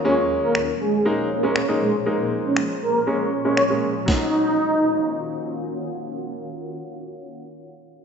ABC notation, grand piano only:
X:1
M:4/4
L:1/16
Q:1/4=119
K:Ebdor
V:1 name="Grand piano"
[A,B,D]4- [A,B,D] z3 [A,B,E]2 z [A,B,D] z [A,B,E]2 z | [A,B,E]4- [A,B,E] z3 [A,B,D]2 z [A,B,D] z [A,B,D]2 z | [G,DE]16- | [G,DE]16 |]